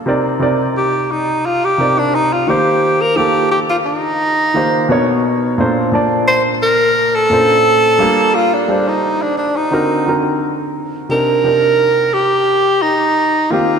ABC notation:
X:1
M:4/4
L:1/16
Q:"Swing 16ths" 1/4=87
K:Cdor
V:1 name="Tenor saxophone"
z4 G2 E2 F G2 D E F G2- | G B G2 G F E8 z2 | z4 c2 B3 A6- A | F D2 E2 D D E4 z4 z |
B6 G4 E4 F2 |]
V:2 name="Grand piano"
[C,CEBd]2 [C,CEBd]6 z2 [C,CEBd]4 [E,B,FGc]2- | [E,B,FGc]2 [E,B,FGA]6 z2 [E,B,FGc]2 [=B,,=B,D^D^A^c]4 | [B,,B,DAc]2 [B,,B,Dda]6 z2 [B,,B,^CDA=c]4 [G,B,DFA]2- | [G,B,DFA]2 [G,FAcd]6 [D,CE^FB]2 [D,CEFB]4 z2 |
[C,CDEB]2 [C,CDEB]6 z6 [E,B,CFG]2 |]